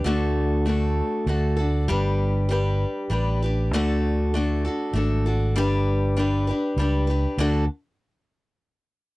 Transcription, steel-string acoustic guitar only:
X:1
M:3/4
L:1/8
Q:1/4=98
K:D
V:1 name="Steel-string acoustic guitar"
[D,A,DFA]2 [A,DFA]2 [A,DFA] [DFA] | [G,DGB]2 [G,DGB]2 [G,DGB] [DGB] | [D,A,DFA]2 [A,DFA] [DFA] [A,DFA] [DFA] | [G,DGB]2 [G,DGB] [DGB] [G,DGB] [DGB] |
[D,A,DFA] z4 z |]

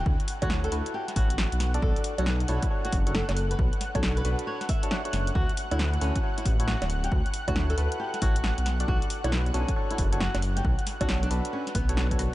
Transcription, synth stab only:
X:1
M:4/4
L:1/16
Q:"Swing 16ths" 1/4=136
K:Bm
V:1 name="Synth stab"
z3 [EFAc]3 [EFAB]4 [EFAc] z4 [DFAd]- | [DFAd]3 [DFAc] z2 [DFAc]2 [DFAc]3 [DFAc] z4 | z3 [DFAc]3 [DFAB]4 z [DFAc]2 [DFAc]3 | z3 [EFAc] z2 [EFAc]2 [EFAc]3 [EFAc] z4 |
z3 [EFAc]3 [EFAB]4 [EFAc] z4 [DFAd]- | [DFAd]3 [DFAc] z2 [DFAc]2 [DFAc]3 [DFAc] z4 | z3 [DFAc]3 [DFAB]4 z [DFAc]2 [DFAc]3 |]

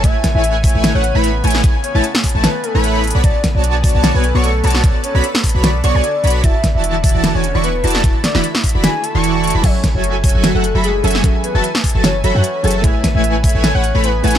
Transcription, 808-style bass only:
X:1
M:4/4
L:1/16
Q:"Swing 16ths" 1/4=150
K:A
V:1 name="808-style bass" clef=bass
A,,, z2 A,,,4 A,,,2 A,,,2 A,,,3 A,,,2 | A,,, z2 A,,, z3 A,,, z3 A,,,4 B,,, | B,,, z2 B,,,4 B,,,2 B,,,2 B,,,3 B,,,2 | B,,, z2 B,,, z3 B,,,3 B,,, B,,, z2 B,,,2 |
E,,, z2 E,,,4 E,,,2 E,,,2 E,,,3 E,,,2 | E,,, z2 E,,, z3 E,,, z3 E,,,4 E,,, | F,,, z2 F,,,4 F,,,2 F,,,2 F,,,3 F,,,2 | F,,, z2 F,,, z3 F,,,3 F,,, F,, z2 F,,,2 |
A,,, z2 A,,,4 A,,,2 A,,,2 A,,,3 A,,,2 |]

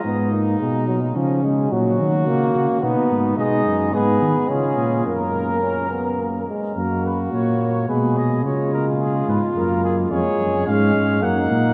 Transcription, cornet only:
X:1
M:3/4
L:1/8
Q:1/4=108
K:Abdor
V:1 name="Cornet"
z6 | z6 | [K:F#] d2 B2 G2 | A4- A z |
A B c c B d | c A G B A G | c2 e2 f2 |]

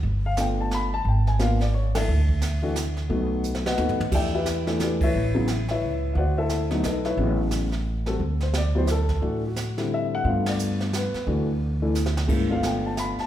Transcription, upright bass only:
X:1
M:3/4
L:1/8
Q:"Swing" 1/4=176
K:G
V:1 name="Upright bass" clef=bass
G,,,6 | ^G,,,6 | D,,6 | B,,,4 ^D,,2 |
E,,6 | A,,,4 ^C,,2 | D,,4 B,,,2 | A,,,6 |
D,,6 | A,,6 | G,,4- G,, z | D,,6 |
G,,,4- G,,, z |]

